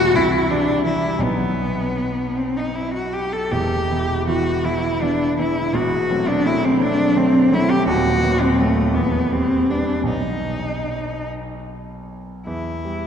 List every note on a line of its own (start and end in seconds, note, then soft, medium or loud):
0.00 0.17 E1 medium
0.00 0.17 E2 medium
0.00 0.18 E3 medium
0.00 0.17 G3 medium
0.00 0.17 E4 medium
0.00 0.17 F#4 loud
0.15 0.49 C2 medium
0.15 0.52 E4 medium
0.50 0.83 E3 medium
0.50 0.83 G3 soft
0.50 0.86 D4 medium
0.50 0.83 E4 medium
0.86 1.19 E3 soft
0.86 1.19 G3 soft
0.86 1.24 E4 medium
0.86 1.20 E4 medium
1.19 3.46 B1 medium
1.19 3.47 F#3 soft
1.19 3.48 B3 soft
1.19 2.39 B3 medium
1.19 3.48 D#4 soft
2.37 2.58 C4 medium
2.57 2.77 D#4 medium
2.76 2.93 E4 medium
2.94 3.15 F#4 medium
3.13 3.34 G4 medium
3.32 3.53 A4 medium
3.52 3.89 E1 medium
3.52 3.89 E2 medium
3.52 4.27 G4 medium
3.91 4.24 E3 soft
3.91 4.24 B3 soft
3.91 4.24 E4 soft
4.27 4.61 E3 soft
4.27 4.61 B3 soft
4.27 4.61 E4 soft
4.27 4.67 F#4 medium
4.65 4.98 E3 soft
4.65 4.98 B3 soft
4.65 5.03 E4 medium
4.65 4.99 E4 soft
5.02 5.35 E3 soft
5.02 5.35 B3 soft
5.02 5.38 D4 medium
5.02 5.35 E4 soft
5.39 5.71 E3 soft
5.39 5.71 B3 soft
5.39 5.76 E4 medium
5.39 5.71 E4 medium
5.74 6.09 E1 medium
5.74 6.09 E2 medium
5.74 6.30 F#4 medium
6.10 6.42 F#3 medium
6.10 6.42 A3 medium
6.10 6.42 C4 medium
6.28 6.48 D4 medium
6.45 6.77 F#3 medium
6.45 6.77 A3 medium
6.45 6.77 C4 medium
6.45 6.67 E4 medium
6.65 6.84 C4 medium
6.80 7.12 F#3 medium
6.80 7.13 A3 medium
6.80 7.13 C4 medium
6.80 7.19 D4 loud
7.16 7.48 F#3 medium
7.16 7.48 A3 medium
7.16 7.48 C4 medium
7.16 7.55 C4 medium
7.52 7.84 F#3 medium
7.52 7.84 A3 medium
7.52 7.84 C4 medium
7.52 7.72 E4 loud
7.71 7.88 G4 loud
7.87 8.21 D#1 medium
7.87 8.22 D#2 medium
7.87 8.44 F#4 loud
8.23 8.54 F#3 medium
8.23 8.54 B3 medium
8.42 8.61 C4 medium
8.59 8.91 F#3 medium
8.59 8.97 A3 medium
8.59 8.91 B3 medium
8.94 9.30 E2 medium
8.94 9.34 B3 medium
9.32 9.66 G3 medium
9.32 9.66 B3 medium
9.32 9.72 C4 medium
9.70 10.05 G3 soft
9.70 10.04 B3 soft
9.70 10.09 D4 medium
10.03 12.41 B1 medium
10.03 12.41 F#3 soft
10.03 12.43 B3 soft
10.10 11.26 D#4 medium
12.47 13.07 E2 medium
12.47 13.07 E4 medium
12.85 13.07 G3 soft